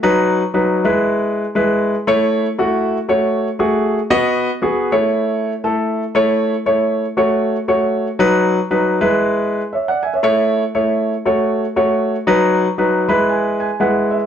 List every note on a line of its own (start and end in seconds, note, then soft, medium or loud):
0.03 0.41 F#3 loud
0.03 0.42 D#4 medium
0.03 0.42 B4 loud
0.54 0.84 F#3 medium
0.54 0.84 D#4 medium
0.54 0.83 B4 medium
0.85 1.44 G#3 medium
0.85 1.44 E4 medium
0.85 1.44 B4 medium
1.55 1.94 G#3 medium
1.55 1.94 E4 medium
1.55 1.94 B4 medium
2.07 2.46 A3 loud
2.07 2.45 E4 medium
2.07 2.46 C#5 loud
2.58 2.97 A3 medium
2.58 2.97 E4 medium
2.58 2.97 F#4 medium
3.09 3.47 A3 medium
3.09 3.47 F#4 medium
3.09 3.47 C#5 medium
3.59 3.98 A3 medium
3.59 3.98 F#4 medium
3.59 3.98 G#4 medium
4.10 4.49 B3 loud
4.10 4.49 F#4 medium
4.10 4.49 D#5 loud
4.62 4.92 B3 medium
4.62 4.92 F#4 medium
4.62 4.93 G#4 medium
4.92 5.51 A3 medium
4.92 5.52 E4 medium
4.92 5.52 C#5 loud
5.64 6.02 A3 medium
5.64 6.02 E4 medium
5.64 6.02 A4 medium
6.15 6.53 A3 loud
6.15 6.54 E4 medium
6.15 6.54 C#5 loud
6.66 7.04 A3 medium
6.66 7.05 E4 medium
6.66 7.05 C#5 medium
7.17 7.56 A3 medium
7.17 7.55 F#4 medium
7.17 7.56 C#5 medium
7.68 8.06 A3 medium
7.68 8.07 F#4 medium
7.68 8.07 C#5 medium
8.19 8.58 F#3 loud
8.19 8.58 D#4 medium
8.19 8.58 B4 loud
8.71 9.01 F#3 medium
8.71 9.01 D#4 medium
8.71 9.00 B4 medium
9.01 9.60 G#3 medium
9.01 9.60 E4 medium
9.01 9.60 B4 loud
9.73 9.88 C#5 medium
9.73 9.87 E5 medium
9.88 10.03 D5 medium
9.88 10.02 F#5 medium
10.03 10.12 E5 medium
10.03 10.13 G#5 medium
10.14 10.22 C#5 medium
10.14 10.38 E5 medium
10.23 10.62 A3 loud
10.23 10.62 E4 medium
10.23 10.62 C#5 loud
10.75 11.13 A3 medium
10.75 11.13 E4 medium
10.75 11.13 C#5 medium
11.25 11.64 A3 medium
11.25 11.64 F#4 medium
11.25 11.64 C#5 medium
11.76 12.15 A3 medium
11.76 12.15 F#4 medium
11.76 12.15 C#5 medium
12.27 12.66 F#3 loud
12.27 12.66 D#4 medium
12.27 12.66 B4 loud
12.78 13.09 F#3 medium
12.78 13.09 D#4 medium
12.78 13.08 B4 medium
13.08 13.68 G#3 medium
13.08 13.68 E4 medium
13.08 13.69 B4 medium
13.08 13.28 B5 medium
13.29 13.58 G#5 medium
13.60 13.79 G#5 medium
13.80 14.19 G#3 medium
13.80 14.19 E4 medium
13.80 14.19 B4 medium
13.80 14.09 F#5 medium
14.11 14.26 E5 medium